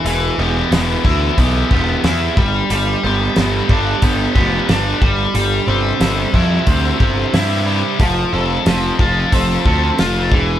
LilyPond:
<<
  \new Staff \with { instrumentName = "Distorted electric guitar" } { \time 4/4 \key f \lydian \tempo 4 = 91 e8 g'8 b8 e'8 g'8 b8 e'8 g8 | g8 g'8 b8 d'8 g'8 b8 d'8 g8 | g8 g'8 c'8 e'8 g'8 c'8 e'8 g'8 | f8 a'8 c'8 f'8 a'8 c'8 f'8 e8 | }
  \new Staff \with { instrumentName = "Overdriven electric guitar" } { \time 4/4 \key f \lydian e8 b8 e8 e'8 b8 g'8 e'8 g8 | g8 b8 g8 d'8 b8 g'8 d'8 g8 | g8 c'8 g8 e'8 c'8 g'8 e'8 g8 | f8 c'8 f8 f'8 c'8 a'8 f'8 e8 | }
  \new Staff \with { instrumentName = "Picked electric bass" } { \clef bass \time 4/4 \key f \lydian e,,8 e,,8 e,,8 d,8 b,,8 e,,8 e,8 g,,8 | g,,8 g,,8 g,,8 g,,8 g,,8 f,,8 g,,8 g,,8 | g,,8 g,,8 g,,8 f,8 d,8 g,,8 g,4 | f,,8 f,,8 f,,8 f,,8 f,,8 d,8 f,,8 e,,8 | }
  \new DrumStaff \with { instrumentName = "Drums" } \drummode { \time 4/4 hho4 <hho sn>8 bd8 <hho bd>8 bd8 <hho sn>8 bd8 | hho4 <hho sn>8 bd8 <hho bd>8 bd8 <hho sn>8 bd8 | hho4 <hho sn>8 bd8 <hho bd>8 bd8 <hho sn>4 | <hho bd>4 <hho sn>8 bd8 <hho bd>8 bd8 <hho sn>8 bd8 | }
>>